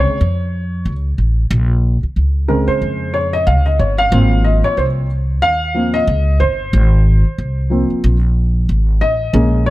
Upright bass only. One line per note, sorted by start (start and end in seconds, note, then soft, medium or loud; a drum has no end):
0.07 muted upright bass stroke soft
0.21 0.82 F2 medium
0.85 1.16 C#2 medium
1.18 1.49 A1 medium
1.51 2.00 A#1 loud
2.03 muted upright bass stroke soft
2.16 2.65 C#2 medium
2.68 muted upright bass stroke soft
2.82 3.48 F2 medium
3.47 3.78 C#2 medium
3.79 4.10 G1 medium
4.12 4.61 G#1 loud
4.64 muted upright bass stroke soft
4.77 5.42 C2 medium
5.42 6.04 D#2 medium
6.07 6.41 C#2 medium
6.40 6.71 G1 medium
6.73 7.22 G#1 loud
7.25 muted upright bass stroke soft
7.38 7.87 C2 medium
7.90 muted upright bass stroke soft
8.04 8.65 A#1 loud
8.69 9.00 G#1 medium
9.01 9.32 A1 medium
9.34 9.70 A#1 loud